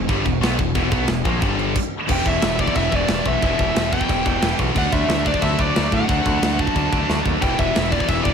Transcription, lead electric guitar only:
2.12 2.27 G5 loud
2.27 2.60 E5 medium
2.61 2.76 D5 medium
2.76 2.95 E5 loud
2.95 3.28 D5 medium
3.27 3.93 E5 medium
3.93 4.55 G5 loud
4.78 4.92 F#5 loud
4.92 5.26 E5 loud
5.27 5.43 D5 medium
5.42 5.59 E5 loud
5.61 5.94 D5 medium
5.94 6.61 F#5 loud
6.61 7.22 A5 loud
7.42 7.59 G5 loud
7.59 7.93 E5 medium
7.91 8.09 D5 medium
8.09 8.23 E5 loud
8.24 8.34 D5 medium

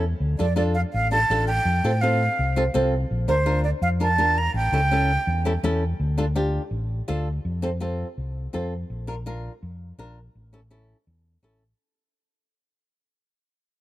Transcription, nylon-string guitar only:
0.39 0.45 D4 medium
0.39 0.45 F4 medium
0.39 0.46 A4 medium
0.56 0.75 D4 medium
0.56 0.76 F4 medium
0.56 0.76 A4 medium
1.11 1.18 D4 medium
1.11 1.18 F4 medium
1.11 1.18 A4 medium
1.30 1.49 D4 medium
1.30 1.49 F4 medium
1.30 1.49 A4 medium
1.84 1.90 C4 medium
1.84 1.90 F4 medium
1.84 1.91 A4 medium
2.02 2.21 C4 medium
2.02 2.22 F4 medium
2.02 2.22 A4 medium
2.56 2.63 C4 medium
2.56 2.63 F4 medium
2.56 2.63 A4 loud
2.74 2.93 C4 medium
2.74 2.93 F4 medium
2.74 2.94 A4 loud
3.28 3.35 D4 medium
3.28 3.35 F4 medium
3.28 3.35 A#4 medium
3.46 3.65 D4 medium
3.46 3.65 F4 medium
3.46 3.66 A#4 medium
4.00 4.07 D4 medium
4.00 4.07 F4 medium
4.00 4.07 A#4 medium
4.18 4.38 D4 medium
4.18 4.38 F4 medium
4.18 4.38 A#4 medium
4.73 4.80 C#4 medium
4.73 4.80 E4 medium
4.73 4.80 A4 medium
4.91 5.10 C#4 medium
4.91 5.11 E4 medium
4.91 5.11 A4 medium
5.45 5.52 C#4 medium
5.45 5.52 E4 medium
5.45 5.52 A4 medium
5.64 5.83 C#4 medium
5.64 5.83 E4 medium
5.64 5.83 A4 medium
6.18 6.24 D4 medium
6.18 6.24 F4 medium
6.18 6.25 A4 medium
6.35 6.61 D4 medium
6.35 6.61 F4 medium
6.35 6.62 G4 loud
7.08 7.27 D4 medium
7.08 7.27 F4 medium
7.08 7.27 A4 medium
7.62 7.69 C4 medium
7.62 7.69 F4 medium
7.62 7.70 A4 medium
7.80 8.06 C4 medium
7.80 8.06 F4 medium
7.80 8.07 A4 medium
8.53 8.72 C4 medium
8.53 8.73 F4 medium
8.53 8.73 A4 medium
9.07 9.14 D4 medium
9.07 9.14 F4 medium
9.07 9.14 A#4 medium
9.26 9.51 D4 medium
9.26 9.52 F4 medium
9.26 9.52 A#4 loud
9.99 10.18 D4 medium
9.99 10.18 F4 medium
9.99 10.18 A#4 medium
10.53 10.59 C#4 medium
10.53 10.59 E4 medium
10.53 10.59 A4 medium
10.70 10.96 C#4 medium
10.70 10.96 E4 medium
10.70 10.96 A4 medium
11.43 11.62 C#4 medium
11.43 11.63 E4 medium
11.43 11.63 A4 medium

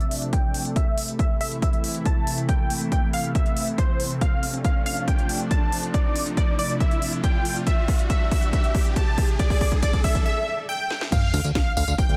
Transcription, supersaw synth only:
0.00 0.23 E5 medium
0.33 0.66 G5 medium
0.76 1.09 E5 loud
1.19 1.36 E5 medium
1.41 1.57 E5 medium
1.62 1.96 E5 medium
2.06 2.39 A5 loud
2.49 2.82 G5 loud
2.92 3.09 G5 medium
3.14 3.30 F5 medium
3.35 3.68 E5 medium
3.78 4.12 C5 medium
4.21 4.55 F5 loud
4.65 4.81 F5 medium
4.86 5.03 F5 medium
5.08 5.41 G5 medium
5.51 5.84 A5 medium
5.94 6.27 D5 loud
6.37 6.54 D5 medium
6.59 6.76 D5 medium
6.80 7.14 E5 loud
7.24 7.57 G5 medium
7.67 8.00 E5 loud
8.10 8.27 E5 medium
8.31 8.48 E5 medium
8.53 8.86 E5 loud
8.96 9.30 A5 medium
9.39 9.73 D5 loud
9.83 9.99 D5 medium
10.04 10.21 E5 medium
10.26 10.59 E5 loud
10.69 11.02 G5 loud
11.12 11.45 F5 loud
11.55 11.72 F5 medium
11.77 11.94 F5 medium
11.99 12.17 G5 loud

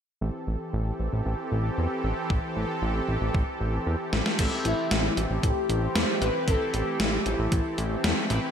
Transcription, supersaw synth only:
0.21 4.35 E3 medium
0.21 4.35 C4 medium
0.21 4.35 G4 medium
0.21 4.35 A4 medium
4.39 8.51 E3 medium
4.39 8.51 A3 medium
4.39 8.51 C4 medium
4.39 8.51 G4 medium

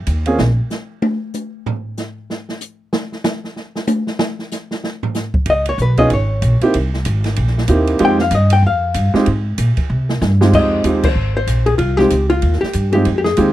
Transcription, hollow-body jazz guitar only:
5.50 5.67 D#5 medium
5.69 5.79 C#5 medium
5.82 5.99 B4 medium
5.99 6.10 D#5 medium
6.13 6.59 C#5 medium
8.05 8.21 G5 loud
8.21 8.32 F5 medium
8.35 8.52 D#5 medium
8.53 8.64 G5 loud
8.67 9.12 F5 medium
10.55 10.83 D#5 loud
11.05 11.34 C5 loud
11.37 11.69 C5 loud
11.66 11.78 G#4 medium
11.78 11.97 F4 medium
11.97 12.29 G4 medium
12.30 12.59 F4 medium
12.61 12.92 G4 medium
12.93 13.17 G4 medium
13.18 13.24 G4 medium
13.24 13.53 G#4 medium

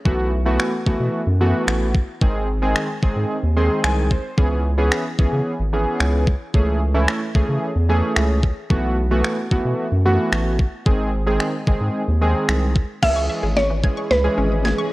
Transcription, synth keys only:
0.05 0.31 E3 medium
0.05 0.31 A3 medium
0.05 0.31 B3 medium
0.05 0.31 F#4 medium
0.46 0.71 E3 medium
0.46 0.71 A3 medium
0.46 0.72 B3 medium
0.46 0.72 F#4 medium
0.86 1.21 E3 medium
0.86 1.21 A3 medium
0.86 1.21 B3 medium
0.86 1.21 F#4 medium
1.40 1.92 E3 medium
1.40 1.92 A3 medium
1.40 1.92 B3 medium
1.40 1.92 F#4 medium
2.21 2.47 D#3 medium
2.21 2.47 G#3 medium
2.21 2.47 C4 medium
2.21 2.47 G#4 medium
2.62 2.88 D#3 medium
2.62 2.88 G#3 medium
2.62 2.88 C4 medium
2.62 2.88 G#4 medium
3.03 3.37 D#3 medium
3.03 3.37 G#3 medium
3.03 3.37 C4 medium
3.03 3.37 G#4 medium
3.56 4.08 D#3 medium
3.56 4.08 G#3 medium
3.56 4.08 C4 medium
3.56 4.08 G#4 medium
3.56 3.82 C6 medium
3.84 4.09 G#5 medium
4.11 4.36 C5 medium
4.37 4.63 E3 medium
4.37 4.63 B3 medium
4.37 4.63 C#4 medium
4.37 4.64 G#4 medium
4.78 5.04 E3 medium
4.78 5.04 B3 medium
4.78 5.04 C#4 medium
4.78 5.04 G#4 medium
5.19 5.53 E3 medium
5.19 5.53 B3 medium
5.19 5.53 C#4 medium
5.19 5.53 G#4 medium
5.73 6.24 E3 medium
5.73 6.24 B3 medium
5.73 6.24 C#4 medium
5.73 6.24 G#4 medium
6.54 6.80 E3 medium
6.54 6.80 A3 medium
6.54 6.80 C#4 medium
6.54 6.80 G#4 medium
6.94 7.20 E3 medium
6.94 7.20 A3 medium
6.94 7.20 C#4 medium
6.94 7.20 E4 medium
7.35 7.69 E3 medium
7.35 7.69 A3 medium
7.35 7.69 C#4 medium
7.35 7.69 G#4 medium
7.89 8.40 E3 medium
7.89 8.40 A3 medium
7.89 8.41 C#4 medium
7.89 8.41 G#4 medium
8.70 8.96 E3 medium
8.70 8.96 A3 medium
8.70 8.96 B3 medium
8.70 8.96 F#4 medium
9.11 9.36 E3 medium
9.11 9.36 A3 medium
9.11 9.37 B3 medium
9.11 9.37 F#4 medium
9.51 9.86 E3 medium
9.51 9.86 A3 medium
9.51 9.86 B3 medium
9.51 9.86 F#4 medium
10.05 10.57 E3 medium
10.05 10.57 A3 medium
10.05 10.57 B3 medium
10.05 10.57 F#4 medium
10.86 11.12 D#3 medium
10.86 11.12 G#3 medium
10.86 11.12 C4 medium
10.86 11.12 G#4 medium
11.27 11.53 D#3 medium
11.27 11.53 G#3 medium
11.27 11.53 C4 medium
11.27 11.53 G#4 medium
11.68 12.02 D#3 medium
11.68 12.02 G#3 medium
11.68 12.02 C4 medium
11.68 12.02 G#4 medium
12.21 12.73 D#3 medium
12.21 12.73 G#3 medium
12.21 12.73 C4 medium
12.21 12.73 G#4 medium
13.02 13.54 E3 medium
13.02 13.54 G#3 medium
13.02 13.54 C#4 medium
13.02 13.54 G#4 medium
13.83 14.09 E3 medium
13.83 14.09 G#3 medium
13.83 14.09 C#4 medium
13.83 14.10 G#4 medium
14.24 14.84 E3 medium
14.24 14.84 G#3 medium
14.24 14.84 C#4 medium
14.24 14.84 G#4 medium

